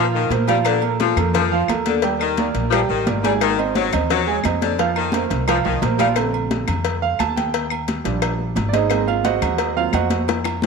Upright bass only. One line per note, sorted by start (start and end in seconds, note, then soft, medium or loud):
0.00 0.27 A#2 loud
0.30 1.11 A#2 loud
1.16 1.65 F2 loud
1.68 2.49 D#2 medium
2.54 2.87 A#1 loud
2.89 3.05 A1 medium
3.07 3.87 G#1 loud
3.93 4.41 D#2 loud
4.44 5.25 F2 medium
5.31 5.63 C2 loud
5.65 5.81 C2 medium
5.82 6.62 A#1 loud
6.68 7.16 F2 loud
7.19 7.99 D#2 medium
8.05 8.53 A#1 loud
8.57 9.37 G#1 loud
9.42 9.90 D#2 loud
9.93 10.66 F2 medium